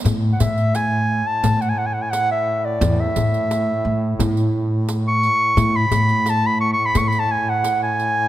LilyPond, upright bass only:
\new Staff \with { instrumentName = "Upright bass" } { \clef bass \time 4/4 \tempo 4 = 87 a,8 a,4. a,8 r4. | e,8 a,4 a,8 a,2 | a,8 a,4. a,8 r4. | }